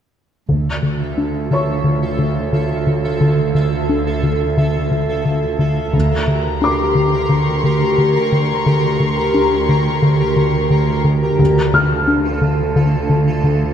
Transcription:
0.49 double bass section D2, cello section D2, analog synth bass D3, synth texture F4 A4 E5
0.83 analog synth bass D3
1.18 analog synth bass D4
1.51 analog synth bass D3, felt piano C#5 C#6
1.84 analog synth bass D3
2.19 analog synth bass D3
2.53 analog synth bass D3
2.87 analog synth bass D3
3.21 analog synth bass D3
3.55 analog synth bass D3
3.89 analog synth bass D4
4.23 analog synth bass D3
4.58 analog synth bass D3
4.91 analog synth bass D3
5.25 analog synth bass D3
5.59 analog synth bass D3
5.93 double bass section D2, cello section D2, analog synth bass D3, synth texture G4 A#4 A#5, violin section A#5
6.28 analog synth bass D3
6.62 analog synth bass D4, violin section C6, felt piano D6
6.95 analog synth bass D3
7.29 analog synth bass D3, violin section C#6
7.64 analog synth bass D3
7.98 analog synth bass D3
8.32 analog synth bass D3
8.66 analog synth bass D3
9.00 analog synth bass D3
9.34 analog synth bass D4
9.69 analog synth bass D3
10.02 analog synth bass D3
10.36 analog synth bass D3
10.70 analog synth bass D3
11.04 analog synth bass D3
11.39 cello section D2, double bass section D2, analog synth bass D3, synth texture F4 A4 A5
11.73 analog synth bass D3, felt piano F6
12.08 analog synth bass D4
12.42 analog synth bass D3
12.76 analog synth bass D3
13.10 analog synth bass D3
13.44 analog synth bass D3

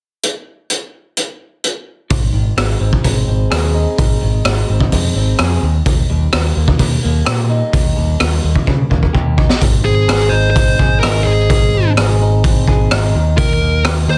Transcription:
0.23 closed hi-hat
0.70 closed hi-hat
1.17 closed hi-hat
1.64 closed hi-hat
2.10 picked electric bass G#1, clean electric guitar G#2, kick, open hi-hat
2.33 picked electric bass G#1, clean electric guitar D#3
2.57 picked electric bass G#1, clean electric guitar G#3, cross-stick, open hi-hat
2.80 picked electric bass G#1, clean electric guitar C4
2.93 kick
3.04 picked electric bass G#1, clean electric guitar G#3, kick, open hi-hat
3.27 picked electric bass G#1, clean electric guitar C4
3.50 picked electric bass D#2, clean electric guitar G#4, cross-stick, open hi-hat
3.74 clean electric guitar D#4
3.98 picked electric bass G#1, clean electric guitar G#2, kick, open hi-hat
4.21 picked electric bass G#1, clean electric guitar D#3
4.45 picked electric bass G#1, clean electric guitar G#3, cross-stick, open hi-hat
4.69 picked electric bass G#1, clean electric guitar C4
4.80 kick
4.92 picked electric bass F2, clean electric guitar G#3, kick, open hi-hat
5.16 picked electric bass G#1, clean electric guitar C4
5.39 picked electric bass F2, clean electric guitar G#4, cross-stick, open hi-hat
5.63 picked electric bass D#2, clean electric guitar D#3
5.86 picked electric bass D#2, clean electric guitar D#3, kick, open hi-hat
6.10 picked electric bass D#2, clean electric guitar G3
6.32 picked electric bass D#2, clean electric guitar G3, cross-stick, open hi-hat
6.56 picked electric bass D#2, clean electric guitar A#3
6.68 kick
6.79 picked electric bass D#2, clean electric guitar G3, kick, open hi-hat
7.03 picked electric bass D#2, clean electric guitar A#3
7.25 picked electric bass A#2, clean electric guitar G4, cross-stick, open hi-hat
7.50 clean electric guitar D#4
7.73 picked electric bass D#2, clean electric guitar D#3, kick, open hi-hat
7.96 picked electric bass D#2, clean electric guitar G3
8.20 picked electric bass D#2, clean electric guitar G3, cross-stick, open hi-hat
8.43 picked electric bass D#2, clean electric guitar A#3
8.56 kick
8.66 picked electric bass C#3, clean electric guitar G3, kick
8.90 picked electric bass D#2, clean electric guitar A#3, kick
9.03 kick
9.13 picked electric bass D#2, clean electric guitar G4, kick
9.37 clean electric guitar D#4, kick
9.49 snare
9.61 picked electric bass G#1, clean electric guitar G#2, kick, open hi-hat
9.85 picked electric bass G#1, clean electric guitar C4, lead electric guitar G#4
10.08 picked electric bass G#1, clean electric guitar G#4, cross-stick, open hi-hat
10.29 picked electric bass G#1, clean electric guitar D#4, lead electric guitar C5
10.50 lead electric guitar C5
10.56 picked electric bass G#1, clean electric guitar C4, kick, open hi-hat
10.79 picked electric bass G#1, clean electric guitar G#4, kick
11.00 clean electric guitar D#4, lead electric guitar A#4, cross-stick, open hi-hat
11.04 picked electric bass G#1
11.23 picked electric bass G#1, clean electric guitar C4, lead electric guitar G#4
11.50 picked electric bass G#1, clean electric guitar G#2, kick, open hi-hat
11.74 picked electric bass G#1, clean electric guitar C4
11.97 picked electric bass G#1, clean electric guitar G#4, cross-stick, open hi-hat
12.22 clean electric guitar D#4
12.44 picked electric bass G#1, kick, open hi-hat
12.68 clean electric guitar G#4, kick
12.91 picked electric bass G#1, clean electric guitar D#4, cross-stick, open hi-hat
13.14 picked electric bass D#2, clean electric guitar D#3
13.37 picked electric bass D#2, clean electric guitar D#3, lead electric guitar A#4, kick, open hi-hat
13.60 picked electric bass D#2, clean electric guitar A#3
13.84 picked electric bass D#2, clean electric guitar G4, cross-stick, open hi-hat
14.08 picked electric bass D#2, clean electric guitar D#4, lead electric guitar C5

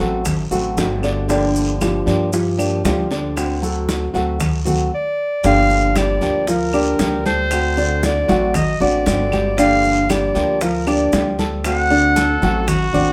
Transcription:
0.00 upright bass A1, grand piano F#3 F#4 A4, nylon-string guitar A3 C4 F#4, high bongo, high conga, short guiro
0.25 muted nylon-string guitar stroke, high bongo, high conga, low conga, long guiro, claves, maracas
0.51 upright bass A1, grand piano F#3 F#4 A4, nylon-string guitar A3 C4 F#4, high bongo, high conga, maracas
0.77 upright bass G1, nylon-string guitar D3 A3 C4 F#4, high bongo, low bongo, high conga, short guiro, maracas
1.03 grand piano D3 D4 D5, short guiro, claves, maracas
1.28 nylon-string guitar D3 F3 A#3 D4 G4, grand piano D3 D4 D5, high bongo, high conga, long guiro, maracas
1.56 high bongo, high conga, maracas
1.81 grand piano F3 F4 G4, high bongo, high conga, short guiro, claves, maracas
2.06 upright bass G2, nylon-string guitar F3 A#3 D4 G4, high bongo, high conga, short guiro, maracas
2.32 grand piano F3 F4 G4, muted nylon-string guitar stroke, high bongo, high conga, long guiro, maracas
2.58 nylon-string guitar F3 A#3 D4 G4, high bongo, high conga, claves, maracas
2.84 upright bass D2, nylon-string guitar F3 A#3 D4 G4, grand piano F3 F4 G4, high bongo, low bongo, high conga, short guiro, maracas
3.11 grand piano D3 D4 D5, short guiro, maracas
3.36 nylon-string guitar D3 A3 C4 F#4, high bongo, high conga, long guiro, claves, maracas
3.62 grand piano F#3 F#4 A4, high bongo, high conga, maracas
3.89 high bongo, high conga, short guiro, maracas
4.14 upright bass D2, grand piano F#3 F#4 A4, nylon-string guitar A3 C4 F#4, high bongo, high conga, short guiro, maracas
4.39 muted nylon-string guitar stroke, high bongo, high conga, low conga, long guiro, claves, maracas
4.65 grand piano F#3 F#4 A4, nylon-string guitar A3 C4 F#4, high bongo, high conga, low conga, maracas
4.95 clarinet D5
5.43 upright bass G1, nylon-string guitar D3 F3 A#3 D4 G4, grand piano D3 D4 D5, clarinet F5, high bongo, high conga, long guiro, maracas
5.70 high bongo, high conga, maracas
5.96 grand piano G3 G4 G5, clarinet D5, high bongo, high conga, short guiro, claves, maracas
6.21 upright bass D2, nylon-string guitar F3 A#3 D4 G4, high bongo, high conga, short guiro, maracas
6.47 grand piano F3 F4 F5, clarinet A#4, muted nylon-string guitar stroke, high bongo, high conga, long guiro, maracas
6.73 nylon-string guitar F3 A#3 D4 G4, grand piano D4 D5 D6, high bongo, high conga, claves, maracas
6.99 upright bass D2, nylon-string guitar F3 A#3 D4 G4, high bongo, low bongo, high conga, short guiro, maracas
7.25 grand piano A4 A5, clarinet C5, high conga, short guiro, maracas
7.51 nylon-string guitar D3 A3 C4 F#4, high bongo, high conga, long guiro, claves, maracas
7.77 grand piano D3 D4 D5, high bongo, high conga, maracas
8.03 clarinet D5, high bongo, high conga, short guiro, maracas
8.28 upright bass A1, grand piano F#3 F#4 F#5, nylon-string guitar A3 C4 F#4, high bongo, high conga, short guiro, maracas
8.54 clarinet D#5, muted nylon-string guitar stroke, high bongo, high conga, low conga, long guiro, claves, maracas
8.80 upright bass A1, nylon-string guitar A3 C4 F#4, grand piano D4 D5 D6, clarinet D5, high bongo, high conga, maracas
9.06 upright bass G1, nylon-string guitar D3 A3 C4 F#4, clarinet D5, high bongo, low bongo, high conga, short guiro, maracas
9.32 grand piano G3 G4 G5, high conga, short guiro, claves, maracas
9.57 nylon-string guitar D3 F3 A#3 D4 G4, grand piano D3 D4 D5, clarinet F5, high bongo, high conga, long guiro, maracas
9.84 high bongo, high conga, maracas
10.09 grand piano G3 G4 G5, clarinet D5, high bongo, high conga, short guiro, claves, maracas
10.35 upright bass D2, nylon-string guitar F3 A#3 D4 G4, high bongo, high conga, short guiro, maracas
10.61 grand piano F3 F4 F5, clarinet A#4, muted nylon-string guitar stroke, high bongo, high conga, long guiro, maracas
10.87 nylon-string guitar F3 A#3 D4 G4, grand piano D4 D5 D6, clarinet D5, high bongo, high conga, claves, maracas
11.12 upright bass D2, nylon-string guitar F3 A#3 D4 G4, high bongo, low bongo, high conga, short guiro, maracas
11.39 grand piano A4 A5, high conga, short guiro, maracas
11.64 nylon-string guitar D3 A3 C4 F#4, clarinet F#5, high bongo, high conga, long guiro, claves, maracas
11.90 grand piano D3 D4 D5, high bongo, high conga, maracas
12.16 trumpet A4, high bongo, high conga, short guiro, maracas
12.42 upright bass A1, grand piano F#3 F#4 F#5, nylon-string guitar A3 C4 F#4, high bongo, high conga, short guiro, maracas
12.68 trumpet F#4, muted nylon-string guitar stroke, high bongo, high conga, low conga, long guiro, claves, maracas
12.93 upright bass A1, nylon-string guitar A3 C4 F#4, grand piano D4 D5 D6, high bongo, high conga, low conga, maracas

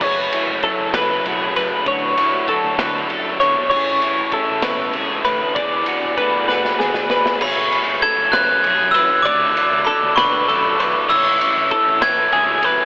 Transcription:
Already playing: clean electric guitar A3 F#4
0.00 picked electric bass F#1, overdriven electric guitar F#2 C#3 F#3 A3 C#4, clean electric guitar C#5, kick, crash
0.05 clean electric guitar F#2
0.32 overdriven electric guitar F#3 A3 C#4, clean electric guitar E4, ride
0.48 picked electric bass F#1
0.63 overdriven electric guitar C#3 F#3 A3 C#4, clean electric guitar F#3 A4, kick, ride
0.80 picked electric bass F#1
0.92 overdriven electric guitar F#2 C#3 F#3 A3 C#4, clean electric guitar E4 B4, snare, ride
1.24 picked electric bass B1, overdriven electric guitar C#3 F#3 A3 C#4, clean electric guitar C#3 F#4 G#4, ride
1.44 clean electric guitar G#4
1.56 picked electric bass F#2, clean electric guitar B4, ride
1.86 picked electric bass D2, overdriven electric guitar D3 F#3 A3 D4, clean electric guitar D3 F#3 C#5, kick, ride
1.92 clean electric guitar E4 F#4
2.17 overdriven electric guitar F#3 A3 D4, ride
2.22 clean electric guitar E4
2.34 picked electric bass D2
2.47 overdriven electric guitar D3 F#3 A3 D4, clean electric guitar F#3 A4, kick, ride
2.51 clean electric guitar F#4
2.65 picked electric bass D2
2.78 overdriven electric guitar D3 F#3 A3 D4, clean electric guitar D3 B4, snare, ride
3.08 picked electric bass F#2, overdriven electric guitar D3 F#3 A3 D4, clean electric guitar A4, ride
3.40 clean electric guitar B2 C#5, picked electric bass D3, ride
3.70 picked electric bass A1, overdriven electric guitar A2 E3 A3 C#4 E4, clean electric guitar A2 C#5, kick, crash
3.74 clean electric guitar E3 C#4 E4 G#4
4.01 overdriven electric guitar A3 C#4 E4, clean electric guitar E4, ride
4.20 picked electric bass A1
4.31 overdriven electric guitar E3 A3 C#4 E4, clean electric guitar E3 G#4 A4, kick, ride
4.50 picked electric bass A1
4.62 overdriven electric guitar A2 E3 A3 C#4 E4, clean electric guitar B2 B4, snare, ride
4.93 picked electric bass C#2, clean electric guitar C#3 G#4, overdriven electric guitar E3 A3, ride
4.97 overdriven electric guitar C#4 E4
5.25 picked electric bass A2, clean electric guitar D3 B4, ride
5.55 picked electric bass E1, overdriven electric guitar E3 B3 D4 G#4, clean electric guitar E3 D5, kick, ride
5.86 overdriven electric guitar D4 G#4, clean electric guitar F#4, ride
5.91 overdriven electric guitar B3
6.04 picked electric bass E1
6.17 overdriven electric guitar E3 B3, clean electric guitar A3 F#4 B4, kick, ride
6.21 overdriven electric guitar D4 G#4
6.34 picked electric bass E1
6.48 overdriven electric guitar B3 D4 G#4, clean electric guitar F#4 B4, snare
6.53 overdriven electric guitar E3
6.65 snare
6.79 picked electric bass G#1, clean electric guitar B2 G#4, overdriven electric guitar E3 B3 D4, snare
6.83 clean electric guitar F#4, overdriven electric guitar G#4
6.94 snare
7.10 picked electric bass E1, clean electric guitar B4, snare
7.26 snare
7.41 picked electric bass F#1, overdriven electric guitar F#2 C#3 F#3 A3, clean electric guitar C#5, glockenspiel B5, kick, crash
7.45 overdriven electric guitar C#4
7.72 overdriven electric guitar F#3 A3 C#4, ride
7.88 picked electric bass F#1
8.02 overdriven electric guitar C#3 F#3 A3, clean electric guitar A4, glockenspiel G#6, kick, ride
8.07 overdriven electric guitar C#4
8.18 picked electric bass F#1
8.32 overdriven electric guitar F#2 C#3 F#3 A3 C#4, clean electric guitar B4, glockenspiel F#6, snare, ride
8.63 picked electric bass B1, overdriven electric guitar C#3 F#3 A3 C#4, clean electric guitar G#4, ride
8.91 clean electric guitar B4, glockenspiel E6, ride
8.95 picked electric bass F#2
9.22 picked electric bass D2, overdriven electric guitar D3 F#3, clean electric guitar D5, glockenspiel D6, kick, ride
9.27 overdriven electric guitar A3 D4
9.57 overdriven electric guitar F#3 A3 D4, ride
9.72 picked electric bass D2
9.85 overdriven electric guitar D3 F#3 A3, clean electric guitar A4, glockenspiel B5, kick, ride
9.89 overdriven electric guitar D4
10.03 picked electric bass D2
10.16 overdriven electric guitar D4, clean electric guitar B4, glockenspiel C#6, snare, ride
10.20 overdriven electric guitar D3 F#3 A3
10.48 picked electric bass F#2, overdriven electric guitar D3 F#3 A3 D4, clean electric guitar A4, ride
10.79 picked electric bass B1, clean electric guitar B4, ride
11.09 picked electric bass A1, overdriven electric guitar A2 E3 A3, clean electric guitar C#5, glockenspiel E6, kick, crash
11.13 overdriven electric guitar C#4 E4
11.41 overdriven electric guitar A3 C#4 E4, ride
11.57 picked electric bass A1
11.71 overdriven electric guitar E3 A3 C#4 E4, clean electric guitar A4, kick, ride
11.88 picked electric bass A1
12.01 overdriven electric guitar E3 A3 C#4 E4, clean electric guitar B4, glockenspiel G#6, snare, ride
12.05 overdriven electric guitar A2
12.32 picked electric bass C#2, overdriven electric guitar E3 A3, clean electric guitar G#4, ride
12.37 overdriven electric guitar C#4 E4
12.63 picked electric bass F#1, clean electric guitar B4, ride

